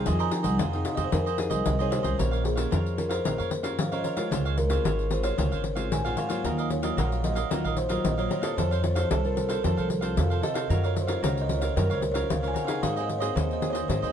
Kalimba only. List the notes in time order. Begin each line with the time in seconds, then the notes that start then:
0.06 G#5
0.20 A#5
0.32 G5
0.45 F#5
0.60 F5
0.74 G5
0.85 F5
0.95 D#5
1.04 C5
1.13 A#4
1.67 D#5
1.81 C#5
1.92 C5
2.45 G#4
2.99 A#4
3.10 C5
3.79 F5
3.93 D#5
4.04 C#5
4.58 A#4
5.12 C5
5.24 C#5
5.93 G#5
6.07 F#5
6.18 F5
6.72 C#5
6.99 F#5
7.13 F5
7.25 D#5
7.78 C5
8.06 D#5
8.19 C#5
8.31 C#5
8.59 C5
8.71 C#5
8.84 C5
8.97 C5
9.11 A4
9.25 A#4
9.37 C5
9.49 A4
10.18 F5
10.43 D#5
10.85 C#5
11.01 C5
11.24 C#5
11.41 D#5
11.58 C#5
11.77 A#4
11.95 C5
12.12 C#5
12.30 F5
12.48 G#5
12.65 F#5
12.83 F5
13.01 D#5
13.18 C#5
13.36 C5
13.53 D#5
13.70 C#5
13.88 C5
14.06 D#5